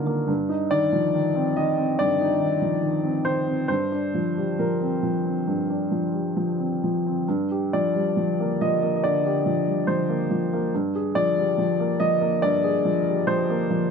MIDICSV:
0, 0, Header, 1, 2, 480
1, 0, Start_track
1, 0, Tempo, 848656
1, 161, Time_signature, 4, 2, 24, 8
1, 2084, Tempo, 891530
1, 4484, Tempo, 852273
1, 7730, End_track
2, 0, Start_track
2, 0, Title_t, "Upright piano"
2, 0, Program_c, 0, 0
2, 0, Control_c, 0, 64, 127
2, 0, Note_on_c, 0, 43, 54
2, 0, Note_on_c, 0, 50, 46
2, 0, Note_on_c, 0, 51, 42
2, 0, Note_on_c, 0, 58, 47
2, 0, Note_on_c, 0, 65, 49
2, 0, Note_on_c, 0, 70, 78
2, 37, Note_off_c, 0, 58, 0
2, 37, Note_on_c, 0, 58, 47
2, 112, Note_off_c, 0, 50, 0
2, 137, Note_off_c, 0, 43, 0
2, 155, Note_on_c, 0, 43, 59
2, 156, Note_off_c, 0, 70, 0
2, 158, Note_off_c, 0, 58, 0
2, 171, Note_off_c, 0, 65, 0
2, 171, Control_c, 0, 64, 0
2, 174, Note_off_c, 0, 51, 0
2, 277, Note_on_c, 0, 63, 49
2, 278, Control_c, 0, 64, 127
2, 400, Note_on_c, 0, 74, 85
2, 402, Note_on_c, 0, 51, 49
2, 471, Note_off_c, 0, 63, 0
2, 522, Note_on_c, 0, 53, 45
2, 595, Note_off_c, 0, 51, 0
2, 644, Note_off_c, 0, 53, 0
2, 647, Note_on_c, 0, 51, 48
2, 765, Note_on_c, 0, 60, 46
2, 838, Note_off_c, 0, 51, 0
2, 884, Note_off_c, 0, 74, 0
2, 885, Note_on_c, 0, 75, 72
2, 887, Note_on_c, 0, 51, 51
2, 956, Note_off_c, 0, 60, 0
2, 1005, Note_on_c, 0, 60, 46
2, 1075, Note_off_c, 0, 51, 0
2, 1096, Note_off_c, 0, 43, 0
2, 1122, Note_off_c, 0, 75, 0
2, 1125, Note_on_c, 0, 74, 87
2, 1132, Note_on_c, 0, 43, 53
2, 1193, Note_off_c, 0, 60, 0
2, 1249, Note_on_c, 0, 63, 47
2, 1355, Note_on_c, 0, 51, 46
2, 1436, Note_off_c, 0, 63, 0
2, 1481, Note_on_c, 0, 53, 37
2, 1550, Note_off_c, 0, 51, 0
2, 1596, Note_on_c, 0, 51, 43
2, 1600, Note_off_c, 0, 53, 0
2, 1715, Note_on_c, 0, 60, 42
2, 1791, Note_off_c, 0, 51, 0
2, 1837, Note_on_c, 0, 51, 43
2, 1837, Note_on_c, 0, 72, 72
2, 1842, Note_off_c, 0, 74, 0
2, 1910, Note_off_c, 0, 60, 0
2, 1964, Note_on_c, 0, 60, 41
2, 2033, Note_off_c, 0, 51, 0
2, 2067, Note_off_c, 0, 43, 0
2, 2074, Note_off_c, 0, 72, 0
2, 2083, Note_on_c, 0, 72, 77
2, 2085, Note_off_c, 0, 60, 0
2, 2087, Note_on_c, 0, 43, 50
2, 2094, Control_c, 0, 64, 0
2, 2194, Control_c, 0, 64, 127
2, 2209, Note_on_c, 0, 62, 40
2, 2331, Note_on_c, 0, 53, 40
2, 2396, Note_off_c, 0, 62, 0
2, 2454, Note_on_c, 0, 55, 38
2, 2517, Note_off_c, 0, 53, 0
2, 2558, Note_off_c, 0, 72, 0
2, 2566, Note_off_c, 0, 55, 0
2, 2573, Note_on_c, 0, 53, 39
2, 2573, Note_on_c, 0, 70, 52
2, 2691, Note_on_c, 0, 60, 41
2, 2756, Note_off_c, 0, 53, 0
2, 2808, Note_on_c, 0, 53, 41
2, 2875, Note_off_c, 0, 60, 0
2, 2929, Note_on_c, 0, 60, 38
2, 2993, Note_off_c, 0, 53, 0
2, 3015, Note_off_c, 0, 43, 0
2, 3048, Note_on_c, 0, 43, 43
2, 3114, Note_off_c, 0, 60, 0
2, 3169, Note_on_c, 0, 62, 42
2, 3285, Note_on_c, 0, 53, 42
2, 3355, Note_off_c, 0, 62, 0
2, 3401, Note_on_c, 0, 55, 34
2, 3475, Note_off_c, 0, 53, 0
2, 3521, Note_off_c, 0, 55, 0
2, 3527, Note_on_c, 0, 53, 42
2, 3646, Note_on_c, 0, 60, 37
2, 3719, Note_off_c, 0, 53, 0
2, 3771, Note_off_c, 0, 70, 0
2, 3781, Note_on_c, 0, 53, 39
2, 3840, Note_off_c, 0, 60, 0
2, 3903, Note_on_c, 0, 60, 40
2, 3968, Note_off_c, 0, 53, 0
2, 3992, Note_off_c, 0, 43, 0
2, 4016, Note_off_c, 0, 60, 0
2, 4017, Control_c, 0, 64, 0
2, 4020, Note_on_c, 0, 43, 57
2, 4118, Control_c, 0, 64, 127
2, 4146, Note_on_c, 0, 67, 43
2, 4264, Note_on_c, 0, 74, 68
2, 4265, Note_on_c, 0, 53, 45
2, 4327, Note_off_c, 0, 67, 0
2, 4381, Note_on_c, 0, 55, 41
2, 4445, Note_off_c, 0, 53, 0
2, 4491, Note_off_c, 0, 55, 0
2, 4499, Note_on_c, 0, 53, 40
2, 4630, Note_on_c, 0, 58, 41
2, 4686, Note_off_c, 0, 53, 0
2, 4735, Note_off_c, 0, 74, 0
2, 4749, Note_on_c, 0, 75, 76
2, 4750, Note_on_c, 0, 53, 46
2, 4812, Note_off_c, 0, 58, 0
2, 4869, Note_on_c, 0, 58, 45
2, 4931, Note_off_c, 0, 53, 0
2, 4936, Note_off_c, 0, 75, 0
2, 4944, Note_on_c, 0, 75, 59
2, 4952, Note_off_c, 0, 43, 0
2, 4975, Note_off_c, 0, 75, 0
2, 4987, Note_on_c, 0, 74, 75
2, 4991, Note_on_c, 0, 50, 47
2, 5051, Note_off_c, 0, 58, 0
2, 5116, Note_on_c, 0, 67, 46
2, 5172, Note_off_c, 0, 50, 0
2, 5225, Note_on_c, 0, 53, 44
2, 5295, Note_off_c, 0, 67, 0
2, 5345, Note_on_c, 0, 55, 38
2, 5410, Note_off_c, 0, 53, 0
2, 5458, Note_off_c, 0, 55, 0
2, 5458, Note_on_c, 0, 72, 67
2, 5460, Note_off_c, 0, 74, 0
2, 5462, Note_on_c, 0, 53, 46
2, 5583, Note_on_c, 0, 58, 42
2, 5650, Note_off_c, 0, 53, 0
2, 5703, Note_on_c, 0, 53, 44
2, 5771, Note_off_c, 0, 58, 0
2, 5830, Note_on_c, 0, 58, 45
2, 5891, Note_off_c, 0, 53, 0
2, 5939, Note_off_c, 0, 72, 0
2, 5942, Control_c, 0, 64, 0
2, 5943, Note_off_c, 0, 58, 0
2, 5948, Note_on_c, 0, 43, 56
2, 6047, Control_c, 0, 64, 127
2, 6067, Note_on_c, 0, 68, 44
2, 6179, Note_on_c, 0, 74, 86
2, 6182, Note_on_c, 0, 53, 46
2, 6251, Note_off_c, 0, 68, 0
2, 6303, Note_on_c, 0, 55, 45
2, 6367, Note_off_c, 0, 53, 0
2, 6416, Note_off_c, 0, 55, 0
2, 6421, Note_on_c, 0, 53, 47
2, 6543, Note_on_c, 0, 58, 45
2, 6605, Note_off_c, 0, 53, 0
2, 6650, Note_off_c, 0, 74, 0
2, 6655, Note_on_c, 0, 75, 84
2, 6658, Note_on_c, 0, 53, 50
2, 6726, Note_off_c, 0, 58, 0
2, 6776, Note_on_c, 0, 58, 48
2, 6843, Note_off_c, 0, 53, 0
2, 6870, Note_off_c, 0, 43, 0
2, 6890, Note_off_c, 0, 75, 0
2, 6895, Note_on_c, 0, 74, 90
2, 6899, Note_on_c, 0, 43, 55
2, 6962, Note_off_c, 0, 58, 0
2, 7016, Note_on_c, 0, 68, 50
2, 7135, Note_on_c, 0, 53, 51
2, 7202, Note_off_c, 0, 68, 0
2, 7263, Note_on_c, 0, 55, 44
2, 7321, Note_off_c, 0, 53, 0
2, 7369, Note_off_c, 0, 74, 0
2, 7373, Note_off_c, 0, 55, 0
2, 7373, Note_on_c, 0, 53, 56
2, 7373, Note_on_c, 0, 72, 85
2, 7500, Note_on_c, 0, 58, 49
2, 7560, Note_off_c, 0, 53, 0
2, 7617, Note_on_c, 0, 53, 50
2, 7683, Note_off_c, 0, 58, 0
2, 7730, Note_off_c, 0, 43, 0
2, 7730, Note_off_c, 0, 53, 0
2, 7730, Note_off_c, 0, 72, 0
2, 7730, End_track
0, 0, End_of_file